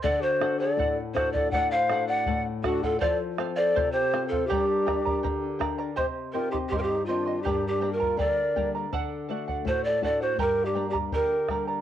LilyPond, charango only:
\new Staff \with { instrumentName = "Charango" } { \time 2/4 \key g \minor \tempo 4 = 81 <a' d'' fis''>8 <a' d'' fis''>16 <d'' fis''>16 <a' d'' fis''>8 <a' d'' fis''>16 <d'' fis''>16 | <a' d'' fis''>8 <a' d'' fis''>16 <d'' fis''>16 <a' d'' fis''>8 <a' d'' fis''>16 <d'' fis''>16 | <a' c'' f''>8 <a' c'' f''>16 <c'' f''>16 <a' c'' f''>8 <a' c'' f''>16 <c'' f''>16 | <g' bes' d'' g'' bes''>8 <bes' d'' g'' bes''>16 <bes' d'' bes''>16 <bes' d'' g'' bes''>8 <bes' d'' g'' bes''>16 <bes' d'' bes''>16 |
<g' c'' ees'' g'' c'''>8 <c'' ees'' g'' c'''>16 <c'' ees'' c'''>16 <c'' ees'' g'' c'''>8 <c'' ees'' g'' c'''>16 <c'' ees'' c'''>16 | <g' bes' d'' g'' bes''>8 <bes' d'' g'' bes''>16 <bes' d'' bes''>16 <bes' d'' g'' bes''>8 <bes' d'' g'' bes''>16 <bes' d'' bes''>16 | <a' d'' fis''>8 <a' d'' fis''>16 <d'' fis''>16 <a' d'' fis''>8 <a' d'' fis''>16 <d'' fis''>16 | <g' bes' d'' g'' bes''>8 <bes' d'' g'' bes''>16 <bes' d'' bes''>16 <bes' d'' g'' bes''>8 <bes' d'' g'' bes''>16 <bes' d'' bes''>16 | }